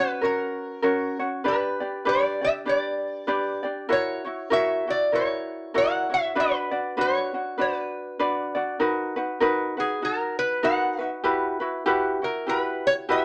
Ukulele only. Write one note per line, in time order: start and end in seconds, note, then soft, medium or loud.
0.00 0.21 C#4 soft
0.00 0.22 F#4 medium
0.00 0.22 C#5 medium
0.21 0.82 C#4 medium
0.21 0.82 F#4 medium
0.21 0.81 A#4 medium
0.21 0.83 C#5 medium
0.82 1.20 C#4 medium
0.82 1.19 F#4 medium
0.82 1.20 A#4 medium
0.82 1.18 C#5 medium
1.19 1.44 C#4 soft
1.19 1.45 F#4 medium
1.19 1.45 C#5 medium
1.44 1.81 D4 medium
1.44 1.80 G4 medium
1.44 1.81 B4 medium
1.44 1.79 D5 medium
1.80 2.05 D4 soft
1.80 2.05 G4 soft
1.80 2.05 D5 medium
2.05 2.42 D4 medium
2.05 2.41 G4 medium
2.05 2.42 B4 medium
2.05 2.40 D5 medium
2.41 2.65 D4 soft
2.41 2.66 G4 medium
2.41 2.66 D5 medium
2.65 3.27 D4 medium
2.65 3.27 G4 medium
2.65 3.26 B4 medium
2.65 3.27 D5 medium
3.27 3.64 D4 medium
3.27 3.63 G4 medium
3.27 3.64 B4 medium
3.27 3.62 D5 medium
3.63 3.89 D4 soft
3.63 3.89 G4 medium
3.63 3.89 D5 medium
3.89 4.25 E4 medium
3.89 4.25 F#4 medium
3.89 4.24 A#4 medium
3.89 4.23 C#5 medium
4.25 4.50 E4 soft
4.25 4.50 F#4 soft
4.25 4.50 C#5 medium
4.50 4.87 E4 medium
4.50 4.86 F#4 loud
4.50 4.87 A#4 medium
4.50 4.88 C#5 loud
4.87 5.12 E4 soft
4.87 5.12 F#4 medium
5.12 5.73 E4 medium
5.12 5.75 F#4 medium
5.12 5.73 A#4 medium
5.12 5.74 C#5 medium
5.74 6.10 E4 medium
5.74 6.09 F#4 medium
5.74 6.09 A#4 medium
5.74 6.08 C#5 medium
6.10 6.36 E4 soft
6.10 6.35 F#4 soft
6.10 6.35 C#5 soft
6.35 6.72 D4 medium
6.35 6.71 F#4 medium
6.35 6.72 B4 medium
6.35 6.70 D5 medium
6.71 6.97 D4 soft
6.71 6.97 F#4 soft
6.71 6.97 D5 medium
6.97 7.34 D4 medium
6.97 7.33 F#4 medium
6.97 7.33 B4 medium
7.34 7.57 D4 soft
7.34 7.58 F#4 soft
7.58 8.18 D4 medium
7.58 8.20 F#4 medium
7.58 8.19 B4 medium
7.58 8.19 D5 medium
8.19 8.56 D4 medium
8.19 8.55 F#4 medium
8.19 8.56 B4 medium
8.19 8.54 D5 medium
8.55 8.79 D4 soft
8.55 8.79 F#4 medium
8.55 8.80 D5 medium
8.80 9.16 D#4 medium
8.80 9.16 F#4 medium
8.80 9.16 A#4 medium
8.80 9.15 B4 medium
9.16 9.40 D#4 soft
9.16 9.40 F#4 soft
9.16 9.41 B4 medium
9.40 9.78 D#4 loud
9.40 9.77 F#4 medium
9.40 9.77 A#4 medium
9.40 9.76 B4 loud
9.77 10.01 D#4 soft
9.77 10.01 F#4 soft
9.77 10.02 B4 soft
10.02 10.62 D#4 medium
10.02 10.63 F#4 medium
10.63 10.99 D#4 medium
10.63 10.99 F#4 medium
10.63 11.00 A#4 medium
10.63 10.97 B4 medium
10.98 11.24 D#4 soft
10.98 11.23 F#4 soft
10.98 11.23 B4 soft
11.24 11.61 E4 medium
11.24 11.60 F#4 medium
11.24 11.60 G4 medium
11.24 11.59 B4 loud
11.60 11.85 E4 soft
11.60 11.86 F#4 medium
11.60 11.85 B4 medium
11.86 12.21 E4 loud
11.86 12.21 F#4 medium
11.86 12.22 G4 medium
11.86 12.23 B4 loud
12.22 12.46 E4 soft
12.22 12.47 F#4 soft
12.47 13.08 E4 medium
12.47 13.09 F#4 medium
12.47 13.07 G4 medium
12.47 13.09 B4 medium
13.09 13.25 E4 medium
13.09 13.25 F#4 medium
13.09 13.25 G4 medium
13.09 13.25 B4 medium